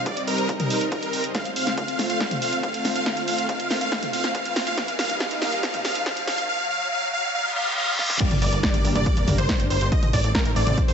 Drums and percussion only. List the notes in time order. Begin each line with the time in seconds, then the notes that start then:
0.06 kick, closed hi-hat
0.17 closed hi-hat
0.27 open hi-hat
0.38 closed hi-hat
0.49 kick, closed hi-hat
0.60 closed hi-hat, mid tom
0.70 open hi-hat
0.81 closed hi-hat
0.92 kick, closed hi-hat
1.03 closed hi-hat
1.13 open hi-hat
1.24 closed hi-hat
1.35 kick, snare, closed hi-hat
1.45 closed hi-hat
1.56 open hi-hat
1.67 snare, closed hi-hat
1.77 kick, closed hi-hat
1.88 closed hi-hat
1.99 snare, open hi-hat
2.10 closed hi-hat
2.20 kick, snare, closed hi-hat
2.31 closed hi-hat, mid tom
2.42 open hi-hat
2.53 closed hi-hat
2.63 kick, closed hi-hat
2.74 closed hi-hat
2.85 snare, open hi-hat
2.96 closed hi-hat
3.06 kick, snare, closed hi-hat
3.17 closed hi-hat
3.28 open hi-hat
3.38 closed hi-hat
3.49 kick, closed hi-hat
3.60 closed hi-hat
3.71 snare, open hi-hat
3.81 closed hi-hat
3.92 kick, snare, closed hi-hat
4.03 closed hi-hat, mid tom
4.13 open hi-hat
4.24 snare, closed hi-hat
4.35 kick, closed hi-hat
4.45 closed hi-hat
4.56 snare, open hi-hat
4.67 closed hi-hat
4.78 kick, snare, closed hi-hat
4.88 closed hi-hat
4.99 snare, open hi-hat
5.10 closed hi-hat
5.20 kick, snare, closed hi-hat
5.31 closed hi-hat
5.42 snare, open hi-hat
5.52 closed hi-hat
5.63 kick, snare, closed hi-hat
5.74 closed hi-hat, mid tom
5.85 snare, open hi-hat
5.95 closed hi-hat
6.06 kick, snare, closed hi-hat
6.17 closed hi-hat
6.27 snare, open hi-hat
6.38 closed hi-hat
7.99 snare
8.10 snare
8.20 kick, closed hi-hat, crash
8.31 closed hi-hat, mid tom
8.42 open hi-hat
8.53 closed hi-hat
8.63 kick, snare, closed hi-hat
8.74 closed hi-hat
8.85 open hi-hat
8.95 closed hi-hat, mid tom
9.06 kick, closed hi-hat
9.17 closed hi-hat
9.28 kick, open hi-hat, mid tom
9.38 closed hi-hat, mid tom
9.49 kick, snare, closed hi-hat
9.60 closed hi-hat
9.70 open hi-hat
9.81 closed hi-hat
9.92 kick, closed hi-hat
10.03 closed hi-hat, mid tom
10.13 kick, open hi-hat
10.24 closed hi-hat
10.35 kick, snare, closed hi-hat
10.45 closed hi-hat
10.56 open hi-hat
10.67 closed hi-hat, mid tom
10.78 kick, closed hi-hat
10.88 open hi-hat